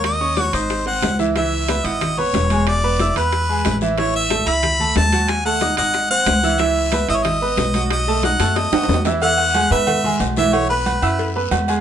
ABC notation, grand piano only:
X:1
M:4/4
L:1/8
Q:1/4=183
K:E
V:1 name="Grand piano"
[^A,^A^a] [Ccc'] [Fff'] [Ddd']2 [^B,^B^b]2 [E,Ee] | [E,Ee]2 [B,Bb] [Ef]2 [B,Bb]2 [G,Gg]- | [G,Gg] [B,Bb] [Eee'] [B,Bb]2 [G,Gg]2 [E,Ee] | [E,Ee]2 [A,Aa] [Eee']2 [A,Aa]2 [F,Ff]- |
[F,Ff] [A,Aa] [Ddd'] [Ddd']2 [^B,^B^b]2 [E,Ee] | [E,Ee]2 [B,Bb] [Eee']2 [B,Bb]2 [F,Ff]- | [F,Ff] [A,Aa] [Ddd'] [A,Aa]2 [F,Ff]2 [E,Ee] | [E,Ee]2 [G,Gg] [B,Bb]2 [G,Gg]2 [E,Ee]- |
[E,Ee] [B,Bb]2 [Eee']2 [B,Bb]2 [G,Gg] |]